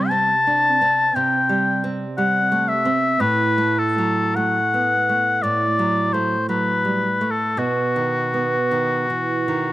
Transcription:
Already playing: C3 G3 C5
0.09 C4 A5
0.47 D4
0.81 C4
1.15 C3 G5
1.49 G3
1.84 C4
2.18 G3 F#5
2.52 A3
2.68 E5
2.85 C4
3.20 A2 B4
3.58 A3
3.79 A4
3.98 F#3
4.35 A3 F#5
4.74 B3
5.09 A3
5.42 A2 D5
5.79 F#3
6.13 A3 C5
6.49 F#3 B4
6.85 G3
7.21 A3
7.31 A4
7.57 B2 F#4
7.96 D#3
8.34 B3
8.71 D#3
9.10 E3
9.48 D#3

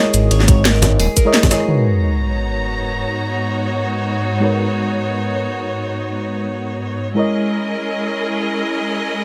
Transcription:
Already playing: G#3 E4 G#4 A#4 C#5
0.00 D#5
0.14 G#1, closed hi-hat, ride, cabasa
0.31 G#1 C#5, closed hi-hat, ride
0.40 snare
0.48 C#5, kick, closed hi-hat, ride, cabasa
0.57 G#1
0.65 A#4, snare, closed hi-hat, ride
0.74 cross-stick, snare
0.82 snare, closed hi-hat, ride, high conga, cabasa
0.99 D#1 G#4, closed hi-hat, open hi-hat
1.17 A#4, kick, closed hi-hat, ride, cabasa
1.25 G#3 E4 A#4 C#5 D#5
1.34 snare, closed hi-hat, ride
1.43 kick, snare, ride, high conga
1.50 G#3 E4 G#4 A#4 C#5 D#5, cross-stick, snare, closed hi-hat, ride, cabasa
1.60 cross-stick
1.66 G#2 G#3 B3 D#4 F#4 A#4 B4 C#5 A#5, sub drop
1.70 C#5
4.40 G#3 D#4 F#4 A#4 B4
4.45 C#5
7.14 G#3 C#4 E4 G#4 A#4 C#5 D#5
7.19 D#5

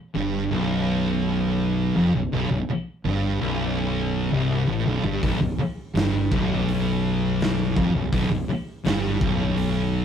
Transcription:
0.14 G1 G2
0.51 B0 B1
1.95 F1 F2
2.14 B0 B1
2.32 B0 B1
2.50 B0 B1
2.69 muted fingered electric bass stroke, muted distorted electric guitar stroke
3.04 G1 G2
3.41 B0 B1
4.32 C1 C2
4.68 A1 A2
4.85 B0 B1
5.03 G1 G2
5.23 B0 B1, kick, open hi-hat
5.40 B0 B1
5.57 muted fingered electric bass stroke, muted distorted electric guitar stroke
5.94 G1 G2, snare, open hi-hat
6.32 B0 B1, kick
6.68 open hi-hat
7.40 snare, open hi-hat
7.76 F1 F2, kick
7.94 B0 B1
8.12 B0 B1, kick, open hi-hat
8.30 B0 B1
8.48 muted distorted electric guitar stroke, muted fingered electric bass stroke
8.84 G1 G2, snare, open hi-hat
9.05 snare
9.21 B0 B1, kick
9.57 open hi-hat

